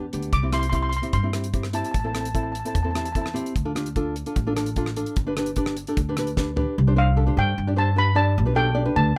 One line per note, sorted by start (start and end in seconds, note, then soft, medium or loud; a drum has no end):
0.00 0.10 E2 medium
0.13 0.31 D2 medium
0.13 0.31 B3 medium
0.13 0.31 D4 medium
0.13 0.31 G4 medium
0.13 closed hi-hat medium
0.23 closed hi-hat soft
0.32 0.99 C2 medium
0.32 0.42 D6 medium
0.32 kick medium
0.32 closed hi-hat medium
0.43 0.49 C4 medium
0.43 0.49 E4 medium
0.43 0.49 G4 medium
0.52 0.65 C4 medium
0.52 0.65 E4 medium
0.52 0.65 G4 medium
0.52 0.58 C6 medium
0.52 cross-stick medium
0.52 closed hi-hat medium
0.59 0.68 C6 medium
0.59 closed hi-hat medium
0.70 0.91 C4 medium
0.70 0.91 E4 medium
0.70 0.91 G4 medium
0.70 0.74 C6 medium
0.70 kick medium
0.70 closed hi-hat medium
0.75 0.81 C6 medium
0.83 0.88 C6 medium
0.89 0.95 C6 medium
0.89 closed hi-hat medium
0.97 1.06 C6 medium
1.02 1.15 C4 medium
1.02 1.15 E4 medium
1.02 1.15 G4 medium
1.02 closed hi-hat medium
1.13 1.80 G2 medium
1.13 1.76 C6 medium
1.13 kick medium
1.13 closed hi-hat medium
1.23 1.30 C4 medium
1.23 1.30 E4 medium
1.23 1.30 G4 medium
1.33 1.46 C4 medium
1.33 1.46 E4 medium
1.33 1.46 G4 medium
1.33 cross-stick medium
1.33 closed hi-hat medium
1.44 closed hi-hat medium
1.53 1.66 C4 medium
1.53 1.66 E4 medium
1.53 1.66 G4 medium
1.53 kick medium
1.53 closed hi-hat medium
1.63 cross-stick medium
1.73 1.92 C4 medium
1.73 1.92 E4 medium
1.73 1.92 G4 medium
1.73 1.82 A5 medium
1.73 closed hi-hat medium
1.84 1.90 A5 soft
1.84 closed hi-hat medium
1.91 2.61 A1 medium
1.91 1.98 A5 medium
1.91 kick medium
1.91 closed hi-hat medium
2.00 2.06 A5 soft
2.04 2.10 C4 medium
2.04 2.10 E4 medium
2.04 2.10 A4 medium
2.04 2.12 A5 medium
2.13 2.27 C4 medium
2.13 2.27 E4 medium
2.13 2.27 A4 medium
2.13 2.20 A5 soft
2.13 cross-stick medium
2.13 closed hi-hat medium
2.21 2.27 A5 soft
2.25 2.34 A5 soft
2.25 closed hi-hat medium
2.34 2.53 C4 medium
2.34 2.53 E4 medium
2.34 2.53 A4 medium
2.34 2.42 A5 medium
2.34 kick medium
2.34 closed hi-hat medium
2.43 2.50 A5 soft
2.52 2.58 A5 soft
2.52 closed hi-hat medium
2.60 2.66 A5 soft
2.65 2.77 C4 medium
2.65 2.77 E4 medium
2.65 2.77 A4 medium
2.65 2.73 A5 soft
2.65 closed hi-hat medium
2.75 3.41 E2 medium
2.75 2.81 A5 soft
2.75 kick medium
2.75 closed hi-hat medium
2.83 2.91 C4 medium
2.83 2.91 E4 medium
2.83 2.91 A4 medium
2.83 2.89 A5 medium
2.91 3.07 C4 medium
2.91 2.96 A5 soft
2.95 3.07 E4 medium
2.95 3.07 G4 medium
2.95 3.03 A5 medium
2.95 cross-stick medium
2.95 closed hi-hat medium
3.05 3.11 A5 soft
3.05 closed hi-hat medium
3.12 3.28 C4 medium
3.12 3.28 A4 medium
3.12 3.19 A5 medium
3.12 kick medium
3.12 closed hi-hat soft
3.16 3.28 E4 medium
3.22 3.27 A5 medium
3.26 cross-stick medium
3.34 3.53 C4 medium
3.34 3.53 E4 medium
3.34 3.53 G4 medium
3.34 closed hi-hat medium
3.46 closed hi-hat soft
3.56 4.22 D2 medium
3.56 kick medium
3.56 closed hi-hat medium
3.65 3.72 D4 medium
3.65 3.72 F4 medium
3.65 3.71 A4 medium
3.75 3.88 D4 medium
3.75 3.88 F4 medium
3.75 3.88 G4 medium
3.75 cross-stick medium
3.75 closed hi-hat medium
3.86 closed hi-hat medium
3.96 4.14 D4 medium
3.96 4.14 F4 medium
3.96 4.14 A4 medium
3.96 kick medium
3.96 closed hi-hat medium
4.16 closed hi-hat medium
4.26 4.38 D4 medium
4.26 4.38 F4 medium
4.26 4.38 A4 medium
4.26 closed hi-hat medium
4.36 5.02 A1 medium
4.36 kick loud
4.36 closed hi-hat medium
4.47 4.53 D4 medium
4.47 4.52 F4 medium
4.47 4.53 A4 medium
4.56 4.68 D4 medium
4.56 4.69 F4 medium
4.56 4.69 A4 medium
4.56 cross-stick medium
4.56 closed hi-hat medium
4.66 closed hi-hat medium
4.76 4.89 D4 medium
4.76 4.89 F4 medium
4.76 4.89 A4 medium
4.76 kick medium
4.76 closed hi-hat medium
4.86 cross-stick medium
4.96 5.15 D4 medium
4.96 5.15 F4 medium
4.96 5.15 A4 medium
4.96 closed hi-hat medium
5.06 closed hi-hat medium
5.16 5.83 G1 medium
5.16 kick loud
5.16 closed hi-hat medium
5.27 5.33 D4 medium
5.27 5.33 G4 medium
5.27 5.33 B4 medium
5.37 5.49 D4 medium
5.37 5.50 G4 medium
5.37 5.50 B4 medium
5.37 cross-stick medium
5.37 closed hi-hat medium
5.46 closed hi-hat medium
5.56 5.75 D4 medium
5.56 5.75 G4 medium
5.56 5.75 B4 medium
5.56 kick medium
5.56 closed hi-hat medium
5.66 cross-stick medium
5.77 closed hi-hat medium
5.87 6.00 D4 medium
5.87 6.00 G4 medium
5.87 6.00 A4 medium
5.87 closed hi-hat medium
5.97 6.63 D2 medium
5.97 kick loud
5.97 closed hi-hat medium
6.09 6.14 D4 medium
6.09 6.14 G4 medium
6.09 6.14 B4 medium
6.17 6.30 D4 medium
6.17 6.30 G4 medium
6.17 6.30 B4 medium
6.17 cross-stick medium
6.17 closed hi-hat medium
6.27 closed hi-hat medium
6.37 6.50 D4 medium
6.37 6.49 G4 medium
6.37 6.49 B4 medium
6.37 kick medium
6.37 snare soft
6.56 6.75 D4 medium
6.56 6.75 G4 medium
6.56 6.75 B4 medium
6.56 floor tom medium
6.78 7.27 C2 loud
6.87 6.93 D4 medium
6.87 6.94 G4 medium
6.87 6.94 C5 medium
6.96 7.09 D4 medium
6.96 7.09 G4 medium
6.96 7.09 C5 medium
6.96 7.39 F5 medium
7.16 7.23 D4 medium
7.16 7.23 G4 medium
7.16 7.23 A4 medium
7.27 7.51 D4 medium
7.27 7.51 G4 medium
7.27 7.51 C5 medium
7.37 7.54 G2 loud
7.37 7.79 G5 loud
7.58 8.39 G2 medium
7.67 7.73 D4 medium
7.67 7.73 G4 medium
7.67 7.74 D5 medium
7.76 7.89 D4 medium
7.76 7.89 G4 medium
7.76 7.89 C5 medium
7.76 7.99 A5 loud
7.96 8.09 D4 medium
7.96 8.09 G4 medium
7.96 8.09 B4 medium
7.96 8.07 B5 loud
8.15 8.34 D4 medium
8.15 8.35 G4 medium
8.15 8.35 D5 medium
8.15 8.58 A5 loud
8.38 8.87 B1 loud
8.45 8.52 D4 medium
8.45 8.53 G4 medium
8.45 8.53 B4 medium
8.55 8.68 D4 medium
8.55 8.69 G4 medium
8.55 8.69 A4 medium
8.55 8.98 G5 medium
8.75 8.82 D4 medium
8.75 8.82 G4 medium
8.75 8.82 D5 medium
8.85 9.10 D4 medium
8.85 9.10 G4 medium
8.85 9.10 B4 medium
8.96 9.13 D2 loud
8.96 9.05 A5 loud